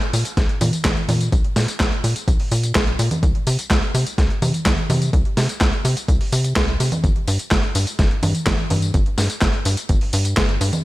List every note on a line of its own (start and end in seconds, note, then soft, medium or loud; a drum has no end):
0.01 closed hi-hat soft
0.13 0.24 A#2 loud
0.13 open hi-hat loud
0.13 tambourine medium
0.25 closed hi-hat medium
0.25 tambourine soft
0.37 0.48 A#1 loud
0.37 kick loud
0.37 snare medium
0.37 closed hi-hat medium
0.37 tambourine soft
0.49 closed hi-hat soft
0.61 0.72 A#2 loud
0.61 open hi-hat loud
0.61 tambourine medium
0.61 high conga medium
0.73 closed hi-hat medium
0.73 tambourine soft
0.85 0.95 A#1 loud
0.85 kick loud
0.85 snare loud
0.85 clap loud
0.85 closed hi-hat medium
0.85 tambourine soft
0.85 high conga medium
0.97 closed hi-hat soft
1.09 1.30 A#2 loud
1.09 open hi-hat loud
1.09 tambourine medium
1.09 high conga medium
1.21 closed hi-hat medium
1.21 tambourine soft
1.32 1.43 A#1 loud
1.32 kick loud
1.32 closed hi-hat medium
1.32 tambourine soft
1.44 closed hi-hat soft
1.56 1.67 A#2 medium
1.56 snare medium
1.56 open hi-hat loud
1.56 tambourine medium
1.68 closed hi-hat medium
1.68 tambourine soft
1.80 1.91 A#1 medium
1.80 kick loud
1.80 snare loud
1.80 clap medium
1.80 closed hi-hat medium
1.80 tambourine soft
1.92 closed hi-hat soft
2.04 2.14 A#2 loud
2.04 open hi-hat loud
2.04 tambourine medium
2.16 closed hi-hat medium
2.16 tambourine soft
2.28 2.38 A#1 medium
2.28 kick loud
2.28 closed hi-hat medium
2.28 tambourine soft
2.40 open hi-hat medium
2.51 2.73 A#2 medium
2.51 open hi-hat loud
2.51 tambourine medium
2.63 closed hi-hat medium
2.63 tambourine soft
2.75 2.96 A#1 loud
2.75 kick loud
2.75 snare loud
2.75 clap medium
2.75 closed hi-hat medium
2.75 tambourine soft
2.87 closed hi-hat soft
2.99 3.10 A#2 loud
2.99 open hi-hat loud
2.99 tambourine medium
3.11 closed hi-hat medium
3.11 tambourine soft
3.11 high conga medium
3.23 3.33 C2 loud
3.23 kick loud
3.23 closed hi-hat medium
3.23 tambourine soft
3.35 closed hi-hat soft
3.47 3.57 C3 loud
3.47 open hi-hat loud
3.47 tambourine medium
3.59 closed hi-hat medium
3.59 tambourine soft
3.70 3.81 C2 medium
3.70 kick loud
3.70 snare loud
3.70 clap medium
3.70 closed hi-hat medium
3.70 tambourine soft
3.83 closed hi-hat soft
3.94 4.05 C3 loud
3.94 open hi-hat loud
3.94 tambourine medium
4.07 closed hi-hat medium
4.07 tambourine soft
4.18 4.29 C2 loud
4.18 kick loud
4.18 snare medium
4.18 closed hi-hat medium
4.18 tambourine soft
4.30 closed hi-hat soft
4.42 4.53 C3 loud
4.42 open hi-hat loud
4.42 tambourine medium
4.42 high conga medium
4.54 closed hi-hat medium
4.54 tambourine soft
4.66 4.76 C2 loud
4.66 kick loud
4.66 snare loud
4.66 clap loud
4.66 closed hi-hat medium
4.66 tambourine soft
4.66 high conga medium
4.78 closed hi-hat soft
4.90 5.11 C3 loud
4.90 open hi-hat loud
4.90 tambourine medium
4.90 high conga medium
5.02 closed hi-hat medium
5.02 tambourine soft
5.13 5.24 C2 loud
5.13 kick loud
5.13 closed hi-hat soft
5.13 tambourine soft
5.25 closed hi-hat soft
5.37 5.48 C3 loud
5.37 snare medium
5.37 open hi-hat loud
5.37 tambourine medium
5.49 closed hi-hat medium
5.49 tambourine soft
5.61 5.72 C2 medium
5.61 kick loud
5.61 snare loud
5.61 clap medium
5.61 closed hi-hat soft
5.61 tambourine soft
5.73 closed hi-hat soft
5.85 5.95 C3 loud
5.85 open hi-hat loud
5.85 tambourine medium
5.97 closed hi-hat medium
5.97 tambourine soft
6.08 6.19 C2 medium
6.08 kick loud
6.08 closed hi-hat medium
6.08 tambourine soft
6.21 open hi-hat medium
6.32 6.54 C3 medium
6.32 open hi-hat loud
6.32 tambourine medium
6.44 closed hi-hat medium
6.44 tambourine soft
6.56 6.77 C2 loud
6.56 kick loud
6.56 snare loud
6.56 clap medium
6.56 closed hi-hat medium
6.56 tambourine soft
6.68 closed hi-hat soft
6.80 6.91 C3 medium
6.80 open hi-hat loud
6.80 tambourine medium
6.92 closed hi-hat medium
6.92 tambourine soft
6.92 high conga medium
7.04 7.14 G1 loud
7.04 kick loud
7.04 closed hi-hat soft
7.04 tambourine soft
7.16 closed hi-hat soft
7.28 7.38 G2 loud
7.28 open hi-hat loud
7.28 tambourine medium
7.39 closed hi-hat medium
7.39 tambourine soft
7.51 7.62 G1 medium
7.51 kick loud
7.51 snare loud
7.51 clap medium
7.51 closed hi-hat soft
7.51 tambourine soft
7.63 closed hi-hat soft
7.75 7.86 G2 loud
7.75 open hi-hat loud
7.75 tambourine medium
7.87 closed hi-hat medium
7.87 tambourine soft
7.99 8.10 G1 loud
7.99 kick loud
7.99 snare medium
7.99 closed hi-hat medium
7.99 tambourine soft
8.11 closed hi-hat soft
8.23 8.33 G2 loud
8.23 open hi-hat loud
8.23 tambourine medium
8.23 high conga medium
8.35 closed hi-hat medium
8.35 tambourine soft
8.47 8.57 G1 loud
8.47 kick loud
8.47 snare loud
8.47 clap medium
8.47 closed hi-hat medium
8.47 tambourine soft
8.47 high conga medium
8.58 closed hi-hat soft
8.70 8.92 G2 medium
8.70 open hi-hat loud
8.70 tambourine medium
8.70 high conga medium
8.82 closed hi-hat medium
8.82 tambourine soft
8.94 9.05 G1 loud
8.94 kick loud
8.94 closed hi-hat medium
8.94 tambourine soft
9.06 closed hi-hat soft
9.18 9.29 G2 medium
9.18 snare medium
9.18 open hi-hat loud
9.18 tambourine medium
9.30 closed hi-hat medium
9.30 tambourine soft
9.42 9.52 G1 medium
9.42 kick loud
9.42 snare loud
9.42 clap medium
9.42 closed hi-hat medium
9.42 tambourine soft
9.53 closed hi-hat soft
9.65 9.76 G2 loud
9.65 open hi-hat loud
9.65 tambourine medium
9.77 closed hi-hat medium
9.77 tambourine soft
9.89 10.00 G1 loud
9.89 kick loud
9.89 closed hi-hat medium
9.89 tambourine soft
10.01 open hi-hat medium
10.13 10.35 G2 medium
10.13 open hi-hat loud
10.13 tambourine medium
10.25 closed hi-hat medium
10.25 tambourine soft
10.37 10.58 G1 loud
10.37 kick loud
10.37 snare loud
10.37 clap medium
10.37 closed hi-hat medium
10.37 tambourine soft
10.49 closed hi-hat soft
10.61 10.71 G2 loud
10.61 open hi-hat loud
10.61 tambourine medium
10.73 closed hi-hat medium
10.73 tambourine soft
10.73 high conga medium